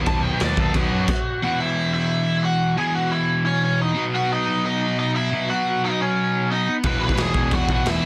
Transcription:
Already playing: distorted electric guitar B2 F#3 B3
0.06 picked electric bass D#2, overdriven electric guitar A5, kick, crash
0.23 overdriven electric guitar G5
0.40 picked electric bass D#2, distorted electric guitar B2 F#3 B3, overdriven electric guitar D5, snare, crash
0.57 picked electric bass D#2, overdriven electric guitar A4, kick
0.74 picked electric bass D#2, overdriven electric guitar F#4, kick, crash
0.92 picked electric bass F#2
1.08 kick, crash
1.42 distorted electric guitar E2 B2 E3, overdriven electric guitar F#4 F#5
1.60 overdriven electric guitar E4 E5
1.94 overdriven electric guitar E4 E5
2.44 overdriven electric guitar F#4 F#5
2.77 distorted electric guitar E2 B2 E3, overdriven electric guitar G#4 G#5
2.95 overdriven electric guitar F#4 F#5
3.10 overdriven electric guitar E4 E5
3.46 overdriven electric guitar C#4 C#5
3.63 overdriven electric guitar C#4 C#5
3.81 overdriven electric guitar D#4 D#5
3.94 distorted electric guitar B2 F#3 B3
4.15 overdriven electric guitar F#4 F#5
4.32 overdriven electric guitar D#4 D#5
4.66 overdriven electric guitar D#4 D#5
4.99 overdriven electric guitar D#4 D#5
5.16 overdriven electric guitar E4 E5
5.31 distorted electric guitar B2 F#3 B3
5.50 overdriven electric guitar F#4 F#5
5.84 overdriven electric guitar D#4 D#5
6.01 overdriven electric guitar C#4 C#5
6.51 overdriven electric guitar D#4 D#5
6.83 picked electric bass E1, distorted electric guitar E2 B2 E3, overdriven electric guitar B4 B5, kick, crash
7.02 picked electric bass B1, overdriven electric guitar B4 B5
7.09 kick
7.17 picked electric bass E1, overdriven electric guitar G#4, snare, crash
7.22 overdriven electric guitar G#5
7.34 picked electric bass E1, distorted electric guitar E2 B2 E3, kick
7.51 picked electric bass E2, overdriven electric guitar F#4 F#5, kick, crash
7.69 picked electric bass B1, overdriven electric guitar F#4 F#5, kick
7.86 picked electric bass E1, overdriven electric guitar E4 E5, snare, crash
8.02 picked electric bass E1

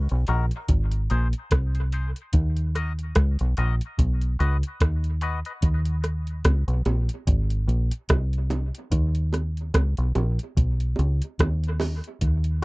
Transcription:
0.09 fingered electric bass B1, closed hi-hat
0.27 fingered electric bass A#1, synth stab D#4 F#4 A#4, closed hi-hat, high bongo
0.51 closed hi-hat
0.68 fingered electric bass G#1, kick, closed hi-hat
0.92 closed hi-hat
1.10 fingered electric bass A#1, synth stab D#4 G#4 C5, closed hi-hat
1.33 closed hi-hat
1.51 fingered electric bass C2, kick, cross-stick, closed hi-hat, high bongo
1.75 synth stab G#4 C5, closed hi-hat
1.92 synth stab D#4 G#4 C5, closed hi-hat, high bongo, low bongo
2.16 closed hi-hat
2.33 fingered electric bass D#2, kick, closed hi-hat
2.57 closed hi-hat
2.75 synth stab F#4 A#4 D#5, cross-stick, closed hi-hat
2.99 closed hi-hat
3.15 fingered electric bass C#2, kick, cross-stick, closed hi-hat, high bongo
3.39 fingered electric bass B1, closed hi-hat
3.57 fingered electric bass A#1, synth stab F#4 A#4 D#5, closed hi-hat, high bongo
3.81 closed hi-hat
3.98 fingered electric bass B1, kick, closed hi-hat
4.21 closed hi-hat
4.39 fingered electric bass C#2, synth stab F#4 B4 D#5, closed hi-hat
4.63 closed hi-hat
4.80 fingered electric bass D#2, kick, cross-stick, closed hi-hat, high bongo
5.04 closed hi-hat
5.21 synth stab F#4 B4 D#5, closed hi-hat, high bongo, low bongo
5.45 synth stab B4 D#5, closed hi-hat
5.62 fingered electric bass D#2, kick, closed hi-hat
5.85 closed hi-hat
6.04 cross-stick, closed hi-hat
6.27 closed hi-hat
6.45 fingered electric bass C#2, kick, cross-stick, closed hi-hat, high bongo
6.68 fingered electric bass B1, closed hi-hat
6.85 fingered electric bass A#1, closed hi-hat, high bongo
7.09 closed hi-hat
7.27 fingered electric bass G#1, kick, closed hi-hat
7.50 closed hi-hat
7.68 fingered electric bass A#1, closed hi-hat
7.91 closed hi-hat
8.09 fingered electric bass C2, kick, cross-stick, closed hi-hat, high bongo
8.33 closed hi-hat
8.50 closed hi-hat, high bongo, low bongo
8.75 closed hi-hat
8.92 fingered electric bass D#2, kick, closed hi-hat
9.15 closed hi-hat
9.33 cross-stick, closed hi-hat, high bongo
9.57 closed hi-hat
9.74 fingered electric bass C#2, kick, cross-stick, closed hi-hat, high bongo
9.97 fingered electric bass B1, closed hi-hat
10.15 fingered electric bass A#1, closed hi-hat, high bongo
10.39 closed hi-hat
10.57 fingered electric bass B1, kick, closed hi-hat
10.80 closed hi-hat
10.96 fingered electric bass C#2, closed hi-hat, high bongo
11.22 closed hi-hat
11.39 fingered electric bass D#2, kick, cross-stick, closed hi-hat, high bongo
11.64 closed hi-hat
11.80 cross-stick, open hi-hat, high bongo, low bongo
12.04 closed hi-hat
12.21 fingered electric bass D#2, kick, closed hi-hat
12.44 closed hi-hat

